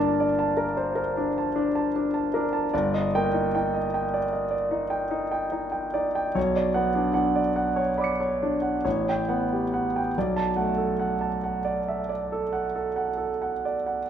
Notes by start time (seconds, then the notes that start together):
Already playing: G1 A#3 D4 A#4 D5 A5
0.20 D5
0.39 A5
0.57 A#4
0.77 C5
0.95 A#4
1.17 D4
1.38 A5
1.56 D4
1.75 A5
1.96 D4
2.14 A5
2.34 D4 A#4
2.53 A5
2.73 G1 D5
2.94 D#5
3.15 A#3 G5
3.34 D#4
3.55 D#4 G5
3.74 D#5
3.94 G5
4.14 D5
4.33 D#5
4.51 D5
4.71 D#4
4.90 G5
5.11 D#4
5.32 G5
5.52 D#4
5.72 G5
5.94 D#4 D5
6.15 G5
6.35 B1 C#5
6.56 D5
6.74 B3 F#5
6.95 D4
7.14 D4 F#5
7.36 D5
7.56 F#5
7.76 C#5
7.98 D5 B5 D6
8.04 C#7
8.20 C#5
8.43 D4
8.62 F#5
8.85 A1 C#5
9.09 G5
9.29 B3 F#5
9.53 G4
9.74 F#5
9.96 G5
10.18 B1 D5
10.37 A5
10.56 A3 F#5
10.78 A4
10.99 F#5
11.21 A5
11.44 F#5
11.65 D5
11.88 E5
12.09 D5
12.32 A4
12.53 F#5
12.76 A4
12.96 F#5
13.17 A4
13.42 F#5
13.65 D5
13.86 F#5